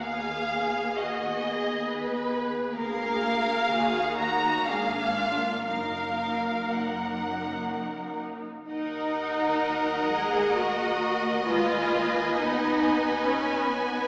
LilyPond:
<<
  \new Staff \with { instrumentName = "Violin section" } { \time 3/4 \key ees \minor \tempo 4 = 64 f''4 ees''4. r8 | f''4. bes''8 f''4 | f''4 ges''4. r8 | ges''2. |
aes''2. | }
  \new Staff \with { instrumentName = "Violin section" } { \time 3/4 \key ees \minor << { aes'4 ges'8 aes'8 ces''4 | bes'4 aes'8 ges'8 aes'8 f'8 | bes'2~ bes'8 r8 | ees''2.~ |
ees''2. | } \\ { r2. | r2. | r2. | bes'2. |
ces''2. | } >> }
  \new Staff \with { instrumentName = "Viola section" } { \time 3/4 \key ees \minor << { aes'2. | aes'4 ges'8 ees'8 d'4 | ees'4 ees'2 | ees'4. aes'8 ges'4 |
f'4 ees'4. r8 | } \\ { ces'2. | bes4 bes4 bes4 | bes4 bes2 | r2. |
r2. | } >> }
  \new Staff \with { instrumentName = "Cello section" } { \clef bass \time 3/4 \key ees \minor ees,2. | d,4 ees,4 aes,4 | ges,2. | r4 ges8 aes8 bes4 |
aes8 bes8 ces'4 des'8 ces'8 | }
  \new Staff \with { instrumentName = "Double bass section" } { \clef bass \time 3/4 \key ees \minor ees,2. | d,4 ees,4 aes,,4 | ges,,2. | ees,2.~ |
ees,2. | }
>>